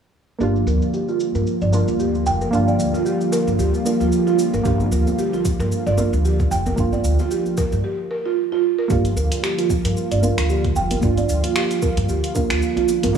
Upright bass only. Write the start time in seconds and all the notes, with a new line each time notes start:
0.40 G1
0.67 D2
1.35 G2
1.62 G1
1.88 D2
2.27 F1
2.53 G1
2.80 D2
3.47 G2
3.59 D2
4.00 D2
4.53 G1
4.65 G1
4.92 D2
5.60 G2
5.86 G1
6.13 D2
6.51 F1
6.78 G1
7.05 D2
7.73 G2
8.90 G1
9.17 D2
9.85 G2
10.11 G1
10.38 D2
10.76 F1
11.03 G1
11.29 D2
11.97 G2
12.09 D2
12.50 D2
13.04 G1